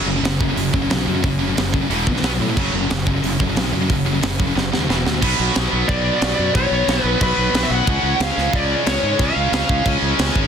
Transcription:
0.06 fingered electric bass F#1, distorted electric guitar F#2 C#3
0.16 distorted electric guitar F#2 C#3
0.23 fingered electric bass F#1, distorted electric guitar F#2 C#3, snare, open hi-hat
0.41 distorted electric guitar F#2 C#3, kick
0.50 distorted electric guitar F#2 C#3
0.56 fingered electric bass F#1, distorted electric guitar F#2 C#3, open hi-hat
0.73 fingered electric bass F#1, distorted electric guitar F#2 C#3, kick
0.82 distorted electric guitar F#2 C#3
0.90 fingered electric bass B1, distorted electric guitar F#2 C#3, snare, open hi-hat
0.98 distorted electric guitar F#2 C#3
1.07 fingered electric bass F#2, distorted electric guitar F#2 C#3
1.16 distorted electric guitar F#2 C#3
1.24 fingered electric bass F#1, distorted electric guitar F#2 C#3, kick, open hi-hat
1.41 distorted electric guitar F#2 C#3
1.49 distorted electric guitar F#2 C#3
1.57 fingered electric bass F#1, distorted electric guitar F#2 C#3, snare, open hi-hat
1.74 distorted electric guitar F#2 C#3, kick
1.81 distorted electric guitar F#2 C#3
1.90 fingered electric bass E1, distorted electric guitar E2 B2 E3, open hi-hat
2.07 fingered electric bass A#1, distorted electric guitar E2 B2, kick
2.16 distorted electric guitar E2 B2, snare
2.23 fingered electric bass B1, distorted electric guitar B2 F#3 B3, snare, open hi-hat
2.32 distorted electric guitar B2 F#3
2.39 fingered electric bass A2, distorted electric guitar B2 F#3
2.48 distorted electric guitar B2 F#3
2.57 fingered electric bass F#1, distorted electric guitar F#2 C#3 F#3, kick, crash
2.73 fingered electric bass F#1, distorted electric guitar F#2 C#3
2.81 distorted electric guitar F#2 C#3
2.89 fingered electric bass F#1, distorted electric guitar F#2 C#3, snare, open hi-hat
3.05 distorted electric guitar F#2 C#3, kick
3.13 distorted electric guitar F#2 C#3
3.23 fingered electric bass F#1, distorted electric guitar F#2 C#3, open hi-hat
3.39 fingered electric bass F#1, distorted electric guitar F#2 C#3, kick
3.47 distorted electric guitar F#2 C#3
3.55 fingered electric bass B1, distorted electric guitar F#2 C#3, snare, open hi-hat
3.64 distorted electric guitar F#2 C#3
3.71 distorted electric guitar F#2 C#3, fingered electric bass F#2
3.80 distorted electric guitar F#2 C#3
3.88 fingered electric bass F#1, distorted electric guitar F#2 C#3, kick, open hi-hat
4.05 distorted electric guitar F#2 C#3
4.13 distorted electric guitar F#2 C#3
4.21 fingered electric bass F#1, distorted electric guitar F#2 C#3, snare, open hi-hat
4.39 distorted electric guitar F#2 C#3, kick
4.47 distorted electric guitar F#2 C#3
4.55 fingered electric bass F#1, distorted electric guitar F#2 C#3, snare
4.72 fingered electric bass D#2, distorted electric guitar F#2 C#3, snare
4.80 distorted electric guitar F#2 C#3
4.89 fingered electric bass E1, distorted electric guitar E2 B2 E3, snare
4.98 distorted electric guitar E2 B2
5.06 fingered electric bass D2, distorted electric guitar E2 B2, snare
5.14 distorted electric guitar E2 B2
5.21 fingered electric bass B1, distorted electric guitar B2 F#3 B3, kick, crash
5.39 fingered electric bass B1
5.55 fingered electric bass B1, snare, crash
5.71 fingered electric bass B1, distorted electric guitar B2 F#3 B3
5.88 fingered electric bass B1, distorted electric guitar B2 F#3 B3, lead electric guitar D5, kick, crash
6.22 fingered electric bass B1, snare, crash
6.31 snare
6.39 fingered electric bass F#2
6.53 fingered electric bass B1, distorted electric guitar B2 F#3 B3, lead electric guitar C#5, kick, crash
6.71 fingered electric bass B1
6.88 fingered electric bass B1, snare, crash
7.02 fingered electric bass B1, distorted electric guitar F#3 B3, lead electric guitar B4
7.07 distorted electric guitar B2
7.21 fingered electric bass B1, distorted electric guitar B2 F#3 B3, lead electric guitar B4, kick, crash
7.37 fingered electric bass B1
7.54 fingered electric bass B1, snare, crash
7.63 lead electric guitar E5, snare
7.70 fingered electric bass B1, lead electric guitar F#5
7.86 fingered electric bass C#2, distorted electric guitar C#3 G#3 C#4, kick, crash
8.03 fingered electric bass C#2
8.20 fingered electric bass C#2, lead electric guitar F5, snare, crash
8.36 fingered electric bass C#2, distorted electric guitar C#3 G#3 C#4, snare
8.52 fingered electric bass C#2, distorted electric guitar C#3 G#3 C#4, lead electric guitar D5, kick, crash
8.86 fingered electric bass C#2, lead electric guitar C#5, snare, crash
9.03 fingered electric bass G#2
9.18 fingered electric bass C#2, distorted electric guitar C#3 G#3 C#4, lead electric guitar F5, kick, crash
9.36 fingered electric bass C#2
9.52 fingered electric bass C#2, lead electric guitar F5, snare, crash
9.69 fingered electric bass C#2, distorted electric guitar C#3 G#3 C#4, kick
9.84 fingered electric bass C#2, distorted electric guitar C#3 G#3 C#4, kick, crash
10.02 fingered electric bass C#2
10.19 fingered electric bass C#2, snare, crash
10.29 snare
10.36 fingered electric bass G#1, kick

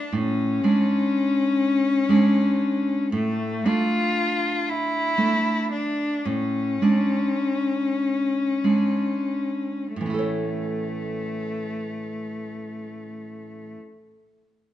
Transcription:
Already playing: cello D4
0.12 nylon-string guitar A2
0.18 cello C#4
0.64 nylon-string guitar G#3 D4
2.09 nylon-string guitar G#3 D4
3.12 nylon-string guitar A2, cello A3
3.65 nylon-string guitar A3 D4, cello F4
4.69 cello E4
5.18 nylon-string guitar A3 D4
5.72 cello D4
6.25 nylon-string guitar A2, cello C#4
6.82 nylon-string guitar G#3 D4
8.64 nylon-string guitar G#3 D4
9.96 nylon-string guitar A2, cello A3
10.01 nylon-string guitar E3
10.06 nylon-string guitar C#4
10.10 nylon-string guitar E4 A4
10.19 nylon-string guitar C#5

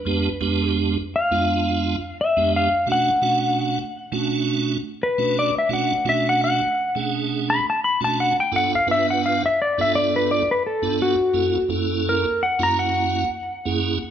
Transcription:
Already playing: electric slide guitar B4
0.05 tonewheel organ F2 G#3 B3 D4 G4
0.41 tonewheel organ F2 G#3 B3 D4 G4
1.16 electric slide guitar F5
1.31 tonewheel organ F2 G#3 B3 D4 F4
2.21 electric slide guitar E5
2.36 tonewheel organ F2 G#3 B3 D4 G4
2.56 electric slide guitar F5
2.86 tonewheel organ B2 A3 C#4 D4 F#4
2.92 electric slide guitar F#5
3.21 tonewheel organ B2 A3 C#4 D4 F#4
4.12 tonewheel organ B2 A3 C#4 D4 F#4
5.03 electric slide guitar B4
5.18 tonewheel organ B2 A3 C#4 D4 F#4
5.39 electric slide guitar D5
5.58 electric slide guitar E5
5.69 tonewheel organ B2 A3 C#4 D4 F#4
5.73 electric slide guitar F#5
6.05 tonewheel organ B2 A3 C#4 D4 F#4
6.09 electric slide guitar E5
6.29 electric slide guitar F#5
6.44 electric slide guitar F#5
6.95 tonewheel organ B2 A3 C#4 D4 G#4
7.50 electric slide guitar B5
7.70 electric slide guitar A5
7.84 electric slide guitar B5
8.01 tonewheel organ B2 A3 C#4 D4 F#4, electric slide guitar A5
8.20 electric slide guitar F#5
8.40 electric slide guitar G5
8.52 tonewheel organ G2 B3 D4 F4 A4
8.56 electric slide guitar F#5
8.75 electric slide guitar F5
8.87 tonewheel organ G2 B3 D4 F4 B4
8.91 electric slide guitar E5
9.10 electric slide guitar F#5
9.26 electric slide guitar F5
9.46 electric slide guitar E5
9.62 electric slide guitar D5
9.78 tonewheel organ G2 B3 D4 F4 A4, electric slide guitar E5
9.95 electric slide guitar D5
10.16 electric slide guitar B4
10.31 electric slide guitar D5
10.51 electric slide guitar B4
10.67 electric slide guitar A4
10.82 tonewheel organ G2 B3 D4 F4 A4
11.02 electric slide guitar F#4
11.33 tonewheel organ F#2 A#3 C#4 E4 A4
11.68 tonewheel organ F#2 A#3 C#4 E4 A4
12.09 electric slide guitar A#4
12.43 electric slide guitar F#5
12.59 tonewheel organ F#2 A#3 C#4 E4 F#4
12.63 electric slide guitar A#5
12.79 electric slide guitar F#5
13.65 tonewheel organ F#2 A#3 C#4 E4 G#4

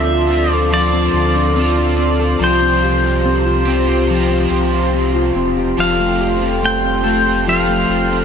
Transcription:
Already playing: sub bass D2, overdriven electric guitar D3 F3 C4 F4 A4, clean electric guitar F3 C4 A4, analog synth pad F4 A4 D5 C6, pedal steel guitar E5
0.08 clean electric guitar D4
0.27 clean electric guitar C4, overdriven electric guitar F4 A4
0.33 overdriven electric guitar C4
0.50 clean electric guitar A4, pedal steel guitar D5
0.71 overdriven electric guitar D3 F3 C4 F4 A4, clean electric guitar F3, pedal steel guitar D5
0.93 clean electric guitar C4
1.13 sub bass D2, clean electric guitar A4
1.35 clean electric guitar D4
1.54 overdriven electric guitar F3 C4 F4, clean electric guitar C4
1.59 overdriven electric guitar A4
1.77 clean electric guitar D4
1.98 clean electric guitar C4
2.20 clean electric guitar A4
2.39 sub bass C2, overdriven electric guitar C3 F3 C4 F4 G4, clean electric guitar F3, analog synth pad G4 C5
2.44 pedal steel guitar C5
2.62 clean electric guitar C4
2.83 clean electric guitar G4
3.04 clean electric guitar F4
3.25 clean electric guitar C4
3.46 clean electric guitar F4
3.65 clean electric guitar C4, overdriven electric guitar F4 G4
3.71 overdriven electric guitar C4
3.89 clean electric guitar G4
4.07 overdriven electric guitar C3 F3, clean electric guitar F3
4.11 overdriven electric guitar C4 F4 G4
4.31 clean electric guitar C4
4.51 sub bass C2, clean electric guitar G4
4.73 clean electric guitar F4
4.94 clean electric guitar C4
5.15 clean electric guitar F4
5.35 sub bass E1, clean electric guitar C4
5.57 clean electric guitar G4
5.77 sub bass F1, overdriven electric guitar F3 G3 C4 F4 A4, clean electric guitar F3, analog synth pad A4 G5 C6, pedal steel guitar F5
6.00 clean electric guitar A3
6.21 clean electric guitar G4
6.42 clean electric guitar C4
6.63 clean electric guitar A3, pedal steel guitar G5
6.84 clean electric guitar C4
7.04 clean electric guitar A3, overdriven electric guitar F4 A4
7.09 overdriven electric guitar C4
7.26 clean electric guitar G4
7.45 overdriven electric guitar F3 G3, clean electric guitar F3
7.49 overdriven electric guitar C4 F4 A4, pedal steel guitar F5
7.69 clean electric guitar A3
7.89 sub bass F1, clean electric guitar G4
8.11 clean electric guitar C4

